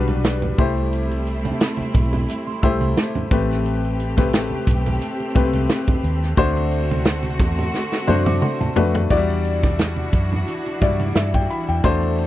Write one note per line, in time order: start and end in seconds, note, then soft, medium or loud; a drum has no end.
0.00 0.51 B1 medium
0.00 0.60 G3 loud
0.00 3.27 G3 medium
0.00 0.56 D4 medium
0.00 0.61 D4 medium
0.00 0.56 F#4 medium
0.00 0.61 F#4 medium
0.00 0.56 B4 medium
0.00 0.61 B4 loud
0.08 closed hi-hat soft
0.08 high conga medium
0.24 snare loud
0.24 closed hi-hat medium
0.24 muted conga soft
0.42 closed hi-hat soft
0.42 high conga soft
0.42 low conga medium
0.58 1.49 C2 medium
0.58 1.68 A3 medium
0.58 3.28 A3 medium
0.58 3.28 C4 medium
0.58 1.68 E4 medium
0.58 3.28 E4 medium
0.58 1.68 G4 medium
0.58 1.68 C5 medium
0.58 kick loud
0.58 open hi-hat soft
0.78 closed hi-hat soft
0.93 closed hi-hat medium
1.12 closed hi-hat soft
1.12 muted conga soft
1.27 closed hi-hat medium
1.45 closed hi-hat soft
1.45 high conga medium
1.61 snare loud
1.61 closed hi-hat medium
1.77 muted fingered electric bass stroke soft
1.77 closed hi-hat soft
1.77 muted conga soft
1.77 high conga medium
1.94 2.25 B1 medium
1.94 kick medium
1.94 closed hi-hat medium
1.94 low conga medium
2.13 closed hi-hat soft
2.13 low conga medium
2.29 closed hi-hat medium
2.29 muted conga soft
2.47 2.62 C6 medium
2.47 muted conga soft
2.62 2.93 C2 medium
2.62 3.07 A3 medium
2.62 3.07 E4 medium
2.62 3.07 G4 medium
2.62 3.07 C5 medium
2.62 2.80 E6 medium
2.62 kick medium
2.62 closed hi-hat medium
2.62 high conga medium
2.81 3.28 C6 medium
2.81 closed hi-hat soft
2.81 high conga medium
2.97 snare loud
2.97 closed hi-hat medium
2.97 muted conga soft
3.15 closed hi-hat soft
3.15 muted conga soft
3.15 high conga soft
3.15 low conga medium
3.30 4.52 A1 medium
3.30 6.34 A3 medium
3.30 3.99 A3 medium
3.30 9.06 C4 medium
3.30 3.99 C4 medium
3.30 6.34 G4 medium
3.30 3.99 G4 medium
3.30 4.00 B4 medium
3.30 kick loud
3.30 closed hi-hat medium
3.51 snare soft
3.51 closed hi-hat soft
3.65 closed hi-hat medium
3.65 muted conga soft
3.84 closed hi-hat soft
4.00 closed hi-hat medium
4.17 4.92 A3 medium
4.17 4.92 C4 medium
4.17 4.92 G4 medium
4.17 4.93 B4 medium
4.17 kick medium
4.17 snare soft
4.17 closed hi-hat soft
4.17 high conga medium
4.33 snare loud
4.33 closed hi-hat medium
4.33 muted conga soft
4.50 high conga medium
4.67 4.97 B1 medium
4.67 kick medium
4.67 closed hi-hat medium
4.67 low conga medium
4.86 closed hi-hat soft
4.86 low conga medium
5.01 closed hi-hat medium
5.01 muted conga soft
5.20 muted conga soft
5.35 5.66 C2 medium
5.35 6.00 A3 medium
5.35 6.00 C4 medium
5.35 6.01 G4 medium
5.35 6.01 B4 medium
5.35 kick medium
5.35 closed hi-hat medium
5.35 high conga medium
5.53 closed hi-hat medium
5.53 high conga medium
5.69 snare loud
5.69 closed hi-hat medium
5.69 muted conga soft
5.88 kick medium
5.88 closed hi-hat soft
5.88 muted conga soft
5.88 high conga soft
5.88 low conga medium
6.04 6.34 D#2 medium
6.04 closed hi-hat medium
6.22 snare soft
6.22 closed hi-hat soft
6.37 7.40 D2 medium
6.37 9.08 D3 medium
6.37 9.08 A3 medium
6.37 7.25 A3 medium
6.37 7.25 D4 medium
6.37 9.08 F#4 medium
6.37 7.25 F#4 loud
6.37 7.25 C5 loud
6.37 kick medium
6.37 closed hi-hat medium
6.37 muted conga soft
6.56 closed hi-hat soft
6.56 muted conga soft
6.71 closed hi-hat medium
6.89 closed hi-hat soft
6.89 high conga medium
7.05 snare loud
7.05 closed hi-hat medium
7.05 muted conga soft
7.23 closed hi-hat soft
7.23 muted conga soft
7.23 high conga medium
7.40 7.70 E2 medium
7.40 kick medium
7.40 closed hi-hat medium
7.40 low conga medium
7.58 closed hi-hat soft
7.58 low conga medium
7.74 snare soft
7.92 snare medium
8.07 8.39 F#2 medium
8.07 8.52 A3 medium
8.07 8.52 D4 medium
8.07 8.52 F#4 medium
8.07 8.52 C5 medium
8.07 8.25 F#6 medium
8.07 high tom medium
8.07 high conga medium
8.26 8.41 D6 medium
8.26 high tom medium
8.26 high conga medium
8.42 8.60 C6 medium
8.42 mid tom medium
8.42 muted conga soft
8.60 9.08 A5 medium
8.60 mid tom medium
8.60 muted conga soft
8.60 high conga soft
8.60 low conga medium
8.76 9.07 F2 medium
8.76 8.99 A3 medium
8.76 8.99 D4 medium
8.76 8.99 F#4 medium
8.76 8.99 B4 medium
8.76 floor tom loud
8.95 floor tom medium
9.10 10.09 E2 medium
9.10 12.27 E3 medium
9.10 9.17 F#3 medium
9.10 11.81 D4 medium
9.10 9.98 E4 medium
9.10 12.27 E4 medium
9.10 9.98 F#4 medium
9.10 11.81 F#4 medium
9.10 9.99 D5 loud
9.10 kick medium
9.10 closed hi-hat medium
9.10 muted conga soft
9.17 10.01 G3 loud
9.30 muted conga soft
9.45 closed hi-hat medium
9.63 kick medium
9.63 snare soft
9.63 closed hi-hat soft
9.63 high conga medium
9.79 snare loud
9.79 closed hi-hat medium
9.79 muted conga soft
9.96 high conga medium
10.13 10.44 F#2 medium
10.13 kick medium
10.13 closed hi-hat medium
10.32 closed hi-hat soft
10.32 low conga medium
10.48 closed hi-hat medium
10.48 muted conga soft
10.66 closed hi-hat soft
10.66 muted conga soft
10.81 11.12 G2 medium
10.81 11.25 G3 medium
10.81 11.25 E4 medium
10.81 11.26 F#4 medium
10.81 11.26 D5 medium
10.81 kick medium
10.81 closed hi-hat medium
10.81 high conga medium
11.00 closed hi-hat soft
11.00 high conga medium
11.15 11.46 G2 medium
11.15 11.34 E5 medium
11.15 snare loud
11.15 closed hi-hat medium
11.15 muted conga soft
11.34 11.49 G5 medium
11.34 kick medium
11.34 muted conga soft
11.34 low conga medium
11.50 11.68 B5 medium
11.50 closed hi-hat medium
11.69 11.83 E2 medium
11.69 12.01 G5 medium
11.69 closed hi-hat soft
11.84 12.27 E2 medium
11.84 12.27 A3 loud
11.84 12.27 C4 medium
11.84 12.27 D4 medium
11.84 12.27 F#4 medium
11.84 12.27 A4 medium
11.84 12.27 C5 loud
11.84 kick medium
11.84 closed hi-hat medium
11.84 muted conga soft
12.03 closed hi-hat soft
12.03 muted conga soft
12.18 closed hi-hat medium